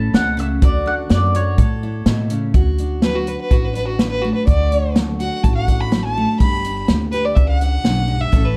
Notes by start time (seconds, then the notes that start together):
Already playing: A1 A3 C#4 A4 A5
0.14 C#2 B2 F#5, snare, closed hi-hat
0.37 C#3 E5, closed hi-hat
0.62 D2 D3 F#4 D5, kick, closed hi-hat
0.86 D4 F#5
1.10 F#2 F#3 D5, snare, closed hi-hat
1.35 F#4 C#5, closed hi-hat
1.58 A2 A4, kick, closed hi-hat
1.83 E4
2.06 A2 B2, snare, closed hi-hat
2.30 C#3, closed hi-hat
2.54 D2 D3 F#4, kick, closed hi-hat
2.78 D4, closed hi-hat
3.02 F#3 B4, snare, closed hi-hat
3.16 F#4
3.27 F#4 B4, closed hi-hat
3.41 B4
3.51 A1 A2 F#4, kick, closed hi-hat
3.65 B4
3.75 D4 B4, closed hi-hat
3.88 F#4
3.99 F#3 B4, snare, closed hi-hat
4.10 B4
4.23 A3 F#4
4.34 B4
4.47 D2 D3 F#4 D5, kick, closed hi-hat
4.72 D4, closed hi-hat
4.96 F#3, snare, closed hi-hat
5.20 F#4 F#5, closed hi-hat
5.44 A1 A2 A5, kick, closed hi-hat
5.55 F#5
5.68 D4, kick, closed hi-hat
5.81 B5
5.92 F#3, snare, closed hi-hat
6.05 A5
6.17 A3
6.40 G1 G2 G4 B5, kick, closed hi-hat
6.64 D4, closed hi-hat
6.88 D2 G3, snare, closed hi-hat
7.12 G4 B4, closed hi-hat
7.25 D5
7.36 C#2 E5, kick, closed hi-hat
7.49 F#5
7.61 D4, closed hi-hat
7.84 B1 F#2, snare, closed hi-hat
8.08 G2
8.21 E5
8.32 A1 A2 E3 C#4 E4 A4, kick, closed hi-hat
8.45 B4